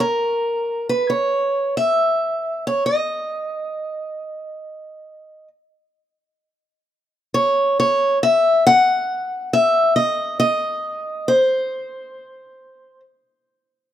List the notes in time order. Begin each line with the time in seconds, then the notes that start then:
0.00 A#4
0.89 B4
1.10 C#5
1.77 E5
2.67 C#5
2.86 D#5
7.34 C#5
7.80 C#5
8.23 E5
8.67 F#5
9.53 E5
9.96 D#5
10.40 D#5
11.28 C5